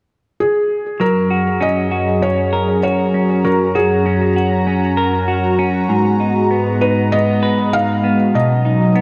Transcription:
0.40 G#4
0.99 F#2 F#3 C#4 G#4 A#4 A#5
1.31 F#4
1.61 C#4 D#5
1.91 F#4
2.22 C#4 C#5
2.53 A#4
2.83 F#4 C#5
3.14 C#4
3.44 F#3 F#4 A#4
3.75 F#4 G#4
4.06 C#4
4.36 F#4
4.67 C#4
4.97 A#4
5.28 F#4
5.59 C#4
5.89 G#2 G#3 B3
6.20 D#4
6.51 B3
6.81 D#4 B4
7.12 B3 D#5
7.43 B4
7.73 D#4 F5
8.04 B3
8.34 B2 F#3 C#4 D#4 D#5
8.65 D#4
8.95 B3

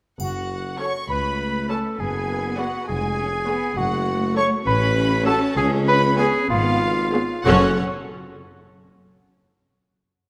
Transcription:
0.20 F#1 F#4 F#5, triangle
0.80 C#4 A4 C#5 C#6
1.10 C#2 A3 B4 B5
1.69 C#4 A4 C#5 A5
1.99 F#1 B3 G#4 G#5
2.57 B3 F#4 G#4 D5 F#5
2.88 F1 G#3 G#4 G#5
3.18 C#4
3.47 B3 G#4 C#5
3.76 F#1 A3 F#4 F#5
4.36 A3 A4 C#5 C#6
4.66 A1 C#4 B4 B5
5.26 A3 F#4 A4 C#5 A5
5.57 C#2 G#4 G#5
5.88 B4 B5
6.18 B3 G#4 C#5 G#5
6.50 G#1 B3 F4 F5
7.14 B3 G#4 C#5
7.45 F#1 F#2 C#4 F#4 A4 C#5 F#5 F#6

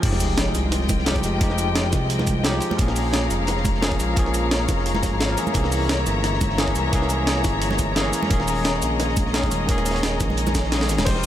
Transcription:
0.01 F1 F3 G#3 D#4 F4 D#5 G5, kick, closed hi-hat, crash, sub drop
0.05 G4
0.12 snare
0.20 closed hi-hat, open hi-hat, cabasa
0.37 snare, closed hi-hat
0.55 C2, closed hi-hat, cabasa
0.72 snare, closed hi-hat
0.81 snare
0.89 kick, closed hi-hat, high conga, cabasa
0.99 snare
1.06 F3 G#3 D#4 G4, snare, closed hi-hat
1.16 kick, closed hi-hat
1.23 F1, closed hi-hat, cabasa
1.39 F1 F3 G#3 D#4, kick, closed hi-hat
1.43 G4
1.50 snare
1.58 closed hi-hat, cabasa
1.75 snare, closed hi-hat
1.92 C2, kick, snare, closed hi-hat, cabasa
2.10 closed hi-hat
2.19 snare, high conga
2.27 kick, closed hi-hat, cabasa
2.43 F3 G#3 D#4 G4, snare, closed hi-hat
2.60 closed hi-hat, cabasa
2.70 snare, high conga
2.77 A#1 F3 A#3 C#4 C#5 F5 A#5, kick, closed hi-hat
2.82 G#4
2.88 snare
2.96 closed hi-hat, open hi-hat, cabasa
3.13 snare, closed hi-hat
3.30 F1, closed hi-hat, cabasa
3.47 snare, closed hi-hat
3.57 snare
3.65 kick, closed hi-hat, high conga, cabasa
3.75 snare
3.81 F3 A#3 C#4 G#4, snare, closed hi-hat
3.91 kick, closed hi-hat
4.00 A#1, closed hi-hat, cabasa
4.15 A#1 F3 A#3 C#4, kick, closed hi-hat
4.19 G#4
4.26 snare
4.34 closed hi-hat, cabasa
4.51 snare, closed hi-hat
4.68 F1, kick, snare, closed hi-hat, cabasa
4.77 snare
4.86 closed hi-hat
4.95 snare, high conga
5.03 kick, snare, closed hi-hat, cabasa
5.12 G#1
5.20 snare, closed hi-hat
5.28 F3 A#3 C#4 A#4
5.37 E3 G#3 A#3 C#4 G#4 E5, closed hi-hat, cabasa
5.47 high conga, cabasa
5.53 C2 E3 A#3 C#4, kick, closed hi-hat
5.57 G#4
5.64 snare
5.72 closed hi-hat, open hi-hat, cabasa
5.89 snare, closed hi-hat
6.07 G1, closed hi-hat, cabasa
6.24 snare, closed hi-hat
6.33 snare
6.41 kick, closed hi-hat, high conga, cabasa
6.50 snare
6.57 E3 A#3 C#4 G#4, snare, closed hi-hat
6.68 kick, closed hi-hat
6.76 C2, closed hi-hat, cabasa
6.90 C2 E3 A#3 C#4, kick, closed hi-hat
6.95 G#4
7.02 snare
7.09 closed hi-hat, cabasa
7.27 snare, closed hi-hat
7.44 G1, kick, snare, closed hi-hat, cabasa
7.62 closed hi-hat
7.71 snare, high conga
7.79 kick, closed hi-hat, cabasa
7.95 E3 A#3 C#4 G#4, snare, closed hi-hat
8.13 closed hi-hat, cabasa
8.23 snare, high conga
8.28 D#1 D#3 A#3 C#4 D#5, kick, closed hi-hat
8.33 G#4
8.40 snare
8.48 closed hi-hat, open hi-hat, cabasa
8.65 snare, closed hi-hat
8.82 A#1, closed hi-hat, cabasa
9.00 snare, closed hi-hat
9.09 snare
9.17 kick, closed hi-hat, high conga, cabasa
9.26 snare
9.33 D#3 A#3 C#4 G#4, snare, closed hi-hat
9.43 kick, closed hi-hat
9.51 D#1, closed hi-hat, cabasa
9.66 D#1 D#3 A#3 C#4, kick, closed hi-hat
9.71 G#4
9.78 snare, closed hi-hat
9.85 snare, closed hi-hat, cabasa
9.91 snare, closed hi-hat
9.95 snare, closed hi-hat
10.03 snare, closed hi-hat
10.20 A#1, kick, snare, closed hi-hat, cabasa
10.30 snare, high conga
10.37 closed hi-hat
10.47 snare, high conga, cabasa
10.55 kick, snare, closed hi-hat, cabasa
10.64 snare
10.71 D#3 A#3 C#4 G#4, snare, closed hi-hat, open hi-hat
10.81 snare
10.89 G#1, snare, closed hi-hat, cabasa
10.99 D#1, snare, closed hi-hat, high conga, cabasa
11.04 F1 F3 G#3 D#4 C5 F5 G5 D#6, kick, closed hi-hat, crash
11.09 G4
11.15 snare

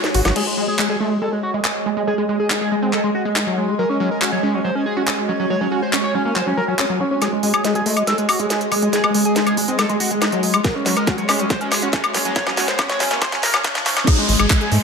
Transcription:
Already playing: G#3 F#4 C#5 G#5
0.04 snare, closed hi-hat
0.14 G#1 F#4, open hi-hat, ride
0.25 G#1 F#3 F#4, snare, closed hi-hat, high woodblock
0.36 G#3 G#4, crash
0.47 G#3
0.55 G#3 G#5
0.68 G#4 D#5
0.79 G#3, clap
0.89 G#3 G#4
1.00 G#3 A3
1.11 G#3
1.22 G#3 A4
1.32 G#3
1.43 F#4
1.54 G#3
1.64 G#3, clap
1.86 G#3
1.97 G#3
2.07 G#3 G#4
2.18 G#3
2.29 G#3
2.40 G#4
2.50 G#3 D#4, clap
2.61 G#4
2.72 G#3
2.82 G#3 C4
2.93 G#3 A4, clap
3.04 G#3
3.15 F#4
3.25 G#3
3.36 G#3 D#4, clap
3.47 F#3
3.57 G#3
3.68 G#3
3.79 F#3 F#4 A#4
3.90 C#4
3.96 C#5
4.00 F#3 C#4
4.11 A#4
4.22 C#4 F#4, clap
4.32 F#3 C#5
4.43 G#3 C#4
4.54 F#3 C#4
4.64 F#3 C5
4.75 C#4
4.86 G#4
4.97 C#4 F#4
5.07 C#4, clap
5.29 F#3 C#4
5.39 F#3 C#4
5.50 F#3 C#5
5.61 F#3 C#4
5.72 C#4 F#4
5.82 C5
5.93 C#4, clap
6.04 C#5
6.14 F#3 C#4
6.25 A#3 C#4
6.36 F#3 C5, clap
6.47 F#3 C#4
6.57 F#3 A#4
6.68 F#3 C#4
6.79 C#4, clap
6.90 F#3
7.00 F#3 C#4
7.11 C#4
7.22 G#3 G#4, snare, closed hi-hat, riser, high woodblock
7.32 G#3
7.43 G#3, open hi-hat
7.51 G#4 D#5, closed hi-hat, high woodblock
7.64 G#3, snare, closed hi-hat
7.75 G#3 G#4, closed hi-hat
7.86 G#3 A3, open hi-hat
7.97 G#3, closed hi-hat, high woodblock
8.07 G#3 A4, snare, closed hi-hat
8.18 G#3, closed hi-hat
8.29 F#4, open hi-hat, high woodblock
8.39 G#3, closed hi-hat
8.50 G#3, snare, closed hi-hat
8.61 closed hi-hat
8.72 G#3, open hi-hat, high woodblock
8.82 G#3, closed hi-hat
8.93 G#3 G#4, snare, closed hi-hat
9.04 G#3, high woodblock
9.14 G#3, open hi-hat
9.25 G#4, closed hi-hat
9.36 G#3 D#4, snare, closed hi-hat
9.47 G#4, closed hi-hat, high woodblock
9.57 G#3, open hi-hat
9.68 G#3 C4, closed hi-hat
9.79 G#3 A4, snare, closed hi-hat, high woodblock
9.89 G#3, closed hi-hat
10.00 F#4, open hi-hat
10.11 G#3, closed hi-hat
10.22 G#3 D#4, snare, closed hi-hat, high woodblock
10.32 F#3, closed hi-hat
10.43 G#3, open hi-hat
10.54 G#3, closed hi-hat, high woodblock
10.64 F#3 F#4 A#4, kick, snare, closed hi-hat
10.75 C#4
10.86 F#3 C#4, snare, open hi-hat
10.92 C#5
10.97 A#4, closed hi-hat, high woodblock
11.07 C#4 F#4, kick, snare, closed hi-hat
11.18 F#3 C#5, closed hi-hat
11.29 G#3 C#4, snare, open hi-hat, high woodblock
11.39 F#3 C#4, closed hi-hat
11.50 F#3 C5, kick, snare, closed hi-hat
11.61 C#4, closed hi-hat
11.72 G#4, snare, open hi-hat, high woodblock
11.82 C#4 F#4, closed hi-hat
11.93 C#4, kick, snare, closed hi-hat
12.04 closed hi-hat, high woodblock
12.14 F#3 C#4, snare, open hi-hat
12.25 F#3 C#4, closed hi-hat
12.36 F#3 C#5, kick, snare, closed hi-hat
12.47 F#3 C#4, snare, high woodblock
12.57 C#4 F#4, snare, open hi-hat
12.68 C5, snare, closed hi-hat
12.79 C#4, kick, snare, closed hi-hat, high woodblock
12.89 C#5, snare, closed hi-hat
13.00 F#3 C#4, snare, open hi-hat
13.11 A#3 C#4, snare, closed hi-hat
13.22 F#3 C5, kick, snare, closed hi-hat, high woodblock
13.32 F#3 C#4, snare, closed hi-hat
13.43 A#4, snare, open hi-hat
13.54 F#3 C#4, snare, closed hi-hat, high woodblock
13.64 C#4, kick, snare, closed hi-hat
13.75 F3, snare, closed hi-hat
13.86 C#4, snare, open hi-hat
13.97 F#3 C#4, snare, closed hi-hat, high woodblock
14.07 G#3 G#4, kick, closed hi-hat, crash, downlifter, high woodblock
14.18 G#3
14.29 G#1 G#3, open hi-hat
14.39 G#1 G#3 G#4, closed hi-hat, high woodblock
14.50 G#3, kick, clap, closed hi-hat
14.61 G#4, closed hi-hat
14.72 G#2 G#3 A3, open hi-hat

